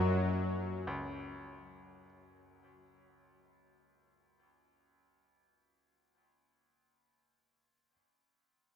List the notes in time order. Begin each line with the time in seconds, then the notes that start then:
Already playing: F#2 F#3 A#3 C#4 F4 F#4 A#4
0.87 C#2